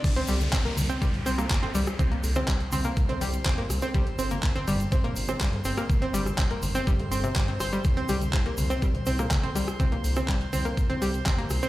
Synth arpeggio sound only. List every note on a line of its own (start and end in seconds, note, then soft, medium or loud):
0.16 0.20 C4 loud
0.28 0.34 G3 loud
0.53 0.61 C4 loud
0.65 0.69 A#3 medium
0.90 0.93 C4 loud
1.02 1.07 G3 loud
1.26 1.34 C4 loud
1.38 1.42 A#3 medium
1.63 1.66 C4 loud
1.75 1.80 G3 loud
1.99 2.08 C4 loud
2.12 2.15 A#3 medium
2.36 2.39 C4 loud
2.48 2.54 G3 loud
2.72 2.81 C4 loud
2.85 2.88 A#3 medium
3.09 3.12 C4 loud
3.21 3.27 G3 loud
3.46 3.54 C4 loud
3.58 3.61 A#3 medium
3.82 3.86 C4 loud
3.94 4.00 G3 loud
4.19 4.27 C4 loud
4.31 4.34 A#3 medium
4.56 4.59 C4 loud
4.67 4.73 G3 loud
4.92 5.00 C4 loud
5.04 5.08 A#3 medium
5.29 5.32 C4 loud
5.41 5.46 G3 loud
5.65 5.74 C4 loud
5.77 5.81 A#3 medium
6.02 6.05 C4 loud
6.14 6.19 G3 loud
6.38 6.47 C4 loud
6.51 6.54 A#3 medium
6.75 6.78 C4 loud
6.87 6.93 G3 loud
7.12 7.20 C4 medium
7.24 7.27 C3 medium
7.36 7.44 G3 loud
7.48 7.54 C4 medium
7.60 7.66 C5 loud
7.73 7.78 G3 medium
7.97 8.00 C4 loud
8.09 8.15 G3 loud
8.33 8.42 C4 loud
8.46 8.49 A#3 medium
8.70 8.73 C4 loud
8.82 8.88 G3 loud
9.07 9.15 C4 loud
9.19 9.22 A#3 medium
9.43 9.47 C4 loud
9.55 9.61 G3 loud
9.80 9.88 C4 loud
9.92 9.95 A#3 medium
10.17 10.20 C4 loud
10.29 10.34 G3 loud
10.53 10.61 C4 loud
10.65 10.69 A#3 medium
10.90 10.93 C4 loud
11.02 11.07 G3 loud
11.26 11.34 C4 loud
11.38 11.42 A#3 medium
11.63 11.66 C4 loud